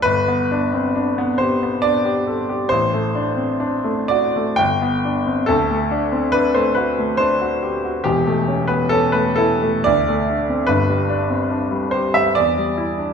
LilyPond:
\new Staff \with { instrumentName = "Grand piano" } { \time 3/4 \key g \major \tempo 4 = 69 << { b'4. c''8 d''4 | c''4. d''8 g''4 | a'4 b'16 c''16 b'8 c''4 | g'8. b'16 a'16 b'16 a'8 d''4 |
b'4. c''16 e''16 d''4 | } \\ { g,,16 b16 d'16 c'16 d'16 b16 g'16 b16 d'16 g'16 a'16 g'16 | a,,16 a16 d'16 c'16 d'16 a16 fis'16 a16 g,,16 b16 d'16 c'16 | d,16 a16 d'16 c'16 d'16 a16 fis'16 a16 d'16 fis'16 g'16 fis'16 | <e,, e,>16 a16 cis'16 b16 cis'16 a16 e'16 a16 d,16 a16 d'16 c'16 |
<g,, g,>16 g16 d'16 c'16 d'16 g16 g'16 g16 e,16 g16 e'16 d'16 | } >> }